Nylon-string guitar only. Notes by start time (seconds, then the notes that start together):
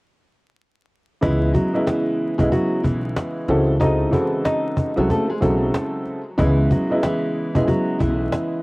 1.22 E3 E4
1.54 F#3 F#4
1.86 E3 E4
2.38 G#3 G#4
2.52 F#3 F#4
2.83 E3 E4
3.80 D#4 D#5
4.13 E3 E4
4.45 D#4 D#5
4.98 F#3 F#4
5.11 A3 A4
5.30 G#3 G#4
5.42 F#3 F#4
6.38 E3 E4
6.71 F#3 F#4
7.04 E3 E4
7.56 G#3 G#4
7.67 F#3 F#4
7.99 E3 E4